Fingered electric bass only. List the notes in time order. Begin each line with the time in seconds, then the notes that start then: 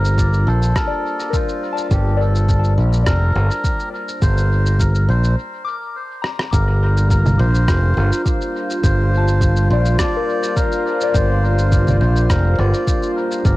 Already playing: G1
0.47 A#1
1.91 G1
2.78 A#1
3.06 F1
3.35 G1
4.22 G1
5.09 A#1
6.53 G1
7.39 A#1
7.68 F1
7.97 G1
8.84 G1
9.70 A#1
11.14 G1
12.01 A#1
12.30 F1
12.59 G1
13.45 G1